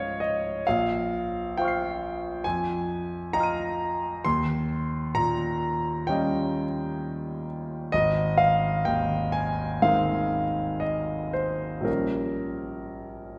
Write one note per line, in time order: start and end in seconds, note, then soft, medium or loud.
0.00 0.60 C#2 soft
0.00 0.62 F3 soft
0.00 0.62 C#4 soft
0.00 0.63 F4 soft
0.00 0.63 C5 soft
0.00 0.68 C#5 medium
0.00 0.20 D#5 medium
0.00 0.67 F5 medium
0.20 0.65 D#5 medium
0.67 2.42 A#1 soft
0.67 1.57 F5 medium
1.57 2.42 F4 soft
1.57 2.42 C5 soft
1.57 2.42 F5 soft
1.57 2.45 G5 medium
1.62 2.44 C#6 soft
1.62 2.45 F6 soft
1.68 2.47 C7 soft
2.44 4.21 F2 medium
2.44 3.34 G#5 medium
3.33 4.20 F4 soft
3.33 4.21 D#5 soft
3.33 4.21 G5 soft
3.33 4.24 A#5 medium
3.33 4.22 C6 soft
3.40 4.24 F6 soft
3.40 4.25 D#7 soft
4.25 7.89 D#2 medium
4.25 5.15 C6 medium
5.15 6.63 A#2 soft
5.15 6.07 A#5 medium
6.07 7.90 G3 soft
6.07 7.89 C#4 soft
6.07 7.90 F4 soft
6.07 7.90 D#5 soft
6.07 7.46 G5 medium
7.92 11.84 G#1 medium
7.92 8.40 D#5 medium
8.38 8.85 F5 medium
8.85 10.42 D#2 soft
8.85 9.33 G5 medium
9.32 9.82 G#5 medium
9.82 11.83 G#3 soft
9.82 11.84 C4 soft
9.82 11.84 D#4 soft
9.82 11.83 A#4 soft
9.82 10.83 F5 medium
10.80 11.33 D#5 medium
11.33 11.87 C5 medium
11.81 13.39 A#1 soft
11.81 13.39 G3 soft
11.81 13.39 A#3 soft
11.81 13.39 C#4 soft
11.81 13.39 A#4 medium